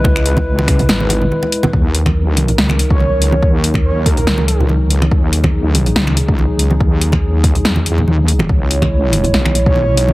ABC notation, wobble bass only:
X:1
M:4/4
L:1/8
Q:"Swing 16ths" 1/4=142
K:Ebphr
V:1 name="Wobble bass" clef=bass
D,,4 A,,,2 z2 | E,,4 D,,4 | E,,4 D,,4 | E,,4 D,,4 |
E,,4 F,,2 E,,2 | D,,4 C,,4 |]